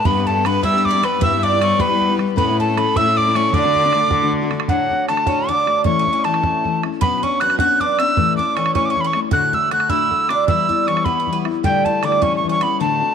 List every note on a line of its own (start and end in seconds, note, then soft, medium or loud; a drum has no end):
0.05 0.59 G2 loud
0.05 0.16 G3 medium
0.05 0.26 B3 medium
0.05 0.16 B3 medium
0.05 0.16 D4 medium
0.05 0.15 G4 medium
0.05 0.25 B4 medium
0.05 0.28 B5 loud
0.05 bodhran medium
0.16 0.37 B3 soft
0.16 0.36 D4 medium
0.16 0.35 G4 soft
0.26 0.44 A3 medium
0.26 0.46 A4 medium
0.26 0.48 A5 medium
0.26 bodhran soft
0.36 0.44 B3 soft
0.36 0.45 D4 soft
0.36 0.45 G4 medium
0.44 0.62 G3 medium
0.44 0.63 B3 medium
0.44 0.62 B3 medium
0.44 0.63 D4 medium
0.44 0.64 G4 medium
0.44 0.66 B4 medium
0.44 0.64 B5 medium
0.44 bodhran medium
0.63 0.74 G3 medium
0.63 1.18 G3 medium
0.63 0.74 B3 medium
0.63 0.74 D4 medium
0.63 0.77 E4 medium
0.63 0.72 G4 medium
0.63 0.85 E5 medium
0.63 0.87 E6 loud
0.63 bodhran medium
0.73 0.94 B3 soft
0.73 0.93 D4 soft
0.73 0.92 G4 soft
0.78 0.89 E4 medium
0.85 1.06 D5 medium
0.85 1.06 D6 medium
0.85 bodhran soft
0.91 1.02 D4 soft
0.91 1.02 E4 medium
0.91 1.03 G4 medium
0.95 1.02 B3 soft
1.02 1.19 G3 medium
1.02 1.20 B3 medium
1.02 1.21 D4 medium
1.02 1.20 G4 medium
1.02 1.25 B4 medium
1.02 1.22 B5 medium
1.02 bodhran medium
1.20 1.75 G2 loud
1.20 1.31 G3 medium
1.20 1.32 B3 medium
1.20 1.43 E4 medium
1.20 1.31 E4 medium
1.20 1.30 G4 medium
1.20 1.46 E5 medium
1.20 1.45 E6 medium
1.20 bodhran medium
1.31 1.52 B3 soft
1.31 1.51 E4 soft
1.31 1.50 G4 medium
1.43 1.60 D4 medium
1.43 1.83 D5 medium
1.43 1.61 D6 medium
1.43 bodhran soft
1.51 1.59 B3 soft
1.51 1.60 E4 soft
1.51 1.60 G4 medium
1.59 1.77 G3 medium
1.59 1.77 B3 medium
1.59 1.79 C#4 medium
1.59 1.78 E4 medium
1.59 1.79 G4 medium
1.59 1.82 C#6 medium
1.59 bodhran medium
1.78 1.89 G3 medium
1.78 2.33 G3 medium
1.78 1.90 B3 medium
1.78 2.16 B3 medium
1.78 1.89 E4 medium
1.78 1.88 G4 medium
1.78 2.20 B4 medium
1.78 2.14 B5 medium
1.78 bodhran medium
1.89 2.10 B3 soft
1.89 2.09 E4 soft
1.89 2.08 G4 medium
2.01 bodhran soft
2.09 2.18 B3 soft
2.09 2.18 E4 medium
2.09 2.19 G4 medium
2.18 2.36 G3 medium
2.18 2.36 B3 medium
2.18 2.36 E4 medium
2.18 2.37 G4 medium
2.18 bodhran soft
2.36 2.47 A2 medium
2.36 2.91 A2 loud
2.36 2.47 A3 medium
2.36 2.59 B3 medium
2.36 2.48 C#4 medium
2.36 2.48 E4 medium
2.36 2.46 A4 medium
2.36 2.61 B4 medium
2.36 2.57 B5 medium
2.36 bodhran medium
2.48 2.69 C#4 soft
2.48 2.68 E4 medium
2.48 2.66 A4 medium
2.59 2.76 A3 medium
2.59 2.97 A4 medium
2.59 2.79 A5 medium
2.59 bodhran soft
2.67 2.77 C#4 soft
2.67 2.77 E4 medium
2.67 2.77 A4 medium
2.77 2.95 A3 medium
2.77 2.94 B3 medium
2.77 2.95 C#4 medium
2.77 2.96 E4 medium
2.77 2.96 A4 medium
2.77 2.98 B5 medium
2.77 bodhran medium
2.95 3.06 A2 medium
2.95 3.49 A2 loud
2.95 3.06 A3 medium
2.95 3.06 C#4 medium
2.95 3.33 E4 medium
2.95 3.06 E4 medium
2.95 3.04 A4 medium
2.95 3.19 E5 medium
2.95 3.19 E6 medium
2.95 bodhran medium
3.06 3.27 C#4 soft
3.06 3.26 E4 soft
3.06 3.25 A4 soft
3.17 3.53 D5 medium
3.17 3.37 D6 medium
3.17 bodhran soft
3.26 3.34 C#4 soft
3.26 3.35 E4 soft
3.26 3.35 A4 medium
3.35 3.53 A3 medium
3.35 3.53 C#4 medium
3.35 3.54 C#4 medium
3.35 3.53 E4 medium
3.35 3.54 A4 medium
3.35 3.56 C#6 medium
3.35 bodhran soft
3.52 3.63 D2 medium
3.52 3.64 A2 medium
3.52 4.07 D3 medium
3.52 3.64 D3 medium
3.52 3.63 A3 medium
3.52 3.64 D4 medium
3.52 4.29 D4 medium
3.52 3.62 F#4 medium
3.52 4.29 D5 medium
3.52 4.33 D6 loud
3.52 bodhran medium
3.63 3.85 D3 soft
3.63 3.83 A3 soft
3.63 3.84 D4 medium
3.63 3.82 F#4 medium
3.75 bodhran soft
3.83 3.92 D3 soft
3.83 3.93 A3 soft
3.83 3.93 D4 soft
3.83 3.92 F#4 medium
3.93 4.10 D3 medium
3.93 4.11 A3 medium
3.93 4.11 D4 medium
3.93 4.11 F#4 medium
3.93 bodhran medium
4.10 4.22 D2 medium
4.10 4.22 A2 medium
4.10 4.65 D3 loud
4.10 4.22 D3 medium
4.10 4.21 A3 medium
4.10 4.22 D4 medium
4.10 4.21 F#4 medium
4.10 bodhran medium
4.22 4.43 D3 soft
4.22 4.41 A3 medium
4.22 4.42 D4 soft
4.22 4.40 F#4 medium
4.32 bodhran soft
4.42 4.49 D3 soft
4.42 4.51 A3 medium
4.42 4.50 D4 soft
4.42 4.51 F#4 medium
4.51 4.69 D3 medium
4.51 4.69 A3 medium
4.51 4.69 D4 medium
4.51 4.70 F#4 medium
4.51 bodhran medium
4.60 bodhran medium
4.68 4.90 D2 medium
4.68 4.91 A2 medium
4.68 4.91 D3 medium
4.68 5.06 F#3 medium
4.68 4.90 A3 medium
4.68 4.91 D4 medium
4.68 4.89 F#4 medium
4.68 5.06 F#5 medium
4.68 bodhran medium
4.90 5.07 D3 soft
4.90 5.09 A3 soft
4.90 5.08 D4 soft
4.90 5.09 F#4 soft
4.90 bodhran soft
5.08 5.27 D3 medium
5.08 5.26 A3 medium
5.08 5.27 D4 medium
5.08 5.26 F#4 medium
5.08 5.50 A5 medium
5.08 bodhran medium
5.17 bodhran soft
5.27 5.49 D2 soft
5.27 5.49 A2 soft
5.27 5.47 D3 medium
5.27 5.49 A3 medium
5.27 5.47 C#4 medium
5.27 5.48 D4 soft
5.27 5.49 F#4 medium
5.27 bodhran medium
5.48 5.67 D3 soft
5.48 5.86 D4 medium
5.48 5.67 D4 medium
5.48 5.65 F#4 medium
5.48 5.85 D6 loud
5.48 bodhran soft
5.66 5.84 D3 soft
5.66 5.84 A3 soft
5.66 5.85 D4 soft
5.66 5.85 F#4 medium
5.66 bodhran medium
5.84 6.06 A2 medium
5.84 6.06 E3 medium
5.84 6.06 A3 medium
5.84 5.98 C#4 medium
5.84 6.06 C#4 medium
5.84 6.05 E4 medium
5.84 6.26 C#6 medium
5.84 bodhran medium
5.99 6.12 C#4 medium
6.06 6.25 A3 soft
6.06 6.25 C#4 soft
6.06 6.24 E4 medium
6.06 bodhran soft
6.13 6.24 C#4 medium
6.24 6.43 E3 medium
6.24 6.78 A3 medium
6.24 6.43 A3 medium
6.24 6.43 C#4 medium
6.24 6.42 E4 medium
6.24 6.82 A5 medium
6.24 bodhran medium
6.34 bodhran medium
6.43 6.65 A2 soft
6.43 6.63 E3 soft
6.43 6.64 A3 medium
6.43 6.65 C#4 soft
6.43 6.64 E4 medium
6.43 bodhran medium
6.64 6.83 E3 soft
6.64 6.83 A3 medium
6.64 6.83 C#4 soft
6.64 6.82 E4 medium
6.64 bodhran soft
6.83 7.02 A3 soft
6.83 7.01 C#4 medium
6.83 7.01 E4 medium
6.83 bodhran medium
7.01 7.22 B2 medium
7.01 7.23 F#3 medium
7.01 7.22 B3 loud
7.01 7.23 B3 medium
7.01 7.23 C#4 medium
7.01 7.22 D4 medium
7.01 7.18 B5 loud
7.01 bodhran medium
7.18 7.25 B5 medium
7.23 7.42 B3 soft
7.23 7.40 C#4 medium
7.23 7.41 C#4 soft
7.23 7.41 D4 medium
7.23 7.42 C#6 medium
7.23 bodhran soft
7.40 7.59 F#3 medium
7.40 7.59 B3 medium
7.40 7.59 C#4 medium
7.40 7.58 D4 medium
7.40 7.59 F#4 medium
7.40 7.58 F#6 medium
7.40 bodhran medium
7.50 bodhran medium
7.59 7.81 B2 soft
7.59 7.80 F#3 soft
7.59 7.81 B3 soft
7.59 7.81 C#4 medium
7.59 7.81 D4 medium
7.59 7.79 F#4 loud
7.59 7.82 F#6 medium
7.59 bodhran medium
7.80 7.99 F#3 soft
7.80 7.99 B3 medium
7.80 7.99 C#4 medium
7.80 7.99 D4 medium
7.80 7.98 D4 soft
7.80 8.00 D6 medium
7.80 bodhran soft
7.99 8.17 B3 soft
7.99 8.17 C#4 soft
7.99 8.17 D4 soft
7.99 8.36 E4 medium
7.99 8.36 E6 loud
7.99 bodhran medium
8.17 8.38 A2 medium
8.17 8.38 E3 medium
8.17 8.38 A3 medium
8.17 8.39 C#4 medium
8.17 8.37 E4 medium
8.17 bodhran medium
8.37 8.57 C#4 soft
8.37 8.56 D4 medium
8.37 8.57 E4 soft
8.37 8.57 D6 medium
8.37 bodhran soft
8.41 8.56 A3 soft
8.55 8.74 E3 medium
8.55 8.74 A3 medium
8.55 8.73 C#4 medium
8.55 8.73 E4 medium
8.55 8.74 C#6 medium
8.55 bodhran medium
8.66 bodhran medium
8.74 8.96 A2 soft
8.74 8.94 E3 medium
8.74 8.95 A3 medium
8.74 8.96 C#4 soft
8.74 8.89 C#4 medium
8.74 8.96 E4 medium
8.74 8.87 C#6 medium
8.74 bodhran medium
8.85 8.92 D6 medium
8.90 9.03 C#4 medium
8.90 9.02 C#6 medium
8.96 9.14 E3 medium
8.96 9.15 A3 soft
8.96 9.14 C#4 medium
8.96 9.12 E4 soft
8.96 bodhran soft
9.01 9.17 C#4 medium
9.01 9.08 B5 medium
9.07 9.20 C#6 medium
9.13 9.31 A3 soft
9.13 9.33 C#4 soft
9.13 9.32 E4 soft
9.13 bodhran medium
9.31 9.54 D2 medium
9.31 9.54 A2 medium
9.31 9.54 D3 medium
9.31 9.53 A3 medium
9.31 9.52 D4 medium
9.31 9.52 F#4 medium
9.31 9.51 F#4 medium
9.31 9.56 F#6 loud
9.31 bodhran medium
9.53 9.70 D3 soft
9.53 9.71 A3 soft
9.53 9.71 D4 soft
9.53 9.71 E4 medium
9.53 9.71 F#4 medium
9.53 9.72 E6 medium
9.53 bodhran soft
9.71 9.90 D3 medium
9.71 9.89 A3 medium
9.71 9.89 D4 medium
9.71 9.89 F#4 medium
9.71 9.91 F#6 medium
9.71 bodhran medium
9.80 bodhran medium
9.89 10.12 D2 soft
9.89 10.12 A2 soft
9.89 10.09 D3 soft
9.89 10.10 A3 soft
9.89 10.11 D4 medium
9.89 10.27 E4 medium
9.89 10.11 F#4 medium
9.89 10.30 E6 medium
9.89 bodhran medium
10.10 10.29 D3 soft
10.10 10.29 A3 soft
10.10 10.28 D4 medium
10.10 10.28 F#4 medium
10.10 bodhran soft
10.29 10.47 D3 soft
10.29 10.48 A3 soft
10.29 10.48 D4 soft
10.29 10.47 D4 medium
10.29 10.48 F#4 soft
10.29 10.47 D6 medium
10.29 bodhran medium
10.47 10.69 E3 medium
10.47 10.69 G3 medium
10.47 10.69 B3 medium
10.47 10.69 E4 medium
10.47 10.68 E4 medium
10.47 10.89 E6 medium
10.47 bodhran medium
10.69 10.87 G3 soft
10.69 10.87 B3 soft
10.69 10.86 D4 medium
10.69 10.88 E4 medium
10.69 bodhran soft
10.87 11.06 E3 medium
10.87 11.05 G3 medium
10.87 11.05 B3 medium
10.87 11.05 C#4 medium
10.87 11.04 E4 medium
10.87 11.06 C#6 medium
10.87 bodhran medium
10.97 bodhran medium
11.05 11.26 E3 soft
11.05 11.27 G3 soft
11.05 11.18 B3 medium
11.05 11.27 B3 medium
11.05 11.27 E4 medium
11.05 11.38 B5 medium
11.05 bodhran medium
11.20 11.31 B3 medium
11.27 11.45 E3 soft
11.27 11.46 G3 medium
11.27 11.45 B3 medium
11.27 11.44 E4 medium
11.27 bodhran soft
11.33 11.44 B3 medium
11.45 11.63 G3 soft
11.45 11.64 B3 soft
11.45 11.64 E4 medium
11.45 bodhran soft
11.63 11.85 A2 medium
11.63 11.85 D3 medium
11.63 11.86 G3 medium
11.63 11.85 G3 medium
11.63 11.85 A3 medium
11.63 11.84 E4 medium
11.63 11.86 G5 medium
11.63 bodhran medium
11.85 12.02 A3 medium
11.85 12.03 A3 soft
11.85 12.03 E4 soft
11.85 12.06 A5 medium
11.85 bodhran soft
12.03 12.21 D3 medium
12.03 12.21 G3 medium
12.03 12.21 A3 medium
12.03 12.20 D4 medium
12.03 12.20 E4 medium
12.03 12.24 D6 medium
12.03 bodhran medium
12.12 bodhran soft
12.21 12.43 A2 soft
12.21 12.42 E3 medium
12.21 12.43 G3 medium
12.21 12.43 C#4 medium
12.21 12.35 C#4 medium
12.21 12.43 E4 medium
12.21 12.36 C#6 medium
12.21 bodhran medium
12.36 12.49 C#6 medium
12.43 12.61 E3 medium
12.43 12.62 G3 medium
12.43 12.61 C#4 medium
12.43 12.60 E4 medium
12.43 bodhran soft
12.49 12.61 C#4 medium
12.49 12.64 C#6 medium
12.61 12.80 G3 soft
12.61 12.78 B3 medium
12.61 12.80 C#4 soft
12.61 12.80 E4 soft
12.61 12.80 B5 medium
12.61 bodhran medium
12.79 13.01 D2 medium
12.79 13.01 A2 medium
12.79 13.01 D3 medium
12.79 13.01 A3 medium
12.79 13.15 A3 medium
12.79 13.01 D4 medium
12.79 13.00 F#4 medium
12.79 13.15 A5 medium
13.01 13.15 D3 soft
13.01 13.15 A3 soft
13.01 13.15 D4 soft
13.01 13.15 F#4 soft